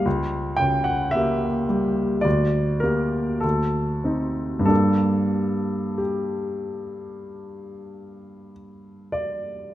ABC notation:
X:1
M:4/4
L:1/16
Q:1/4=48
K:Gm
V:1 name="Grand piano"
z2 g ^f =e4 d2 B2 A4 | A4 G8 z2 d2 |]
V:2 name="Grand piano"
^C,,2 ^C,2 [^A,G]2 G,2 D,,2 [B,G]2 D,,2 [=CE]2 | [G,,G,B,D]16 |]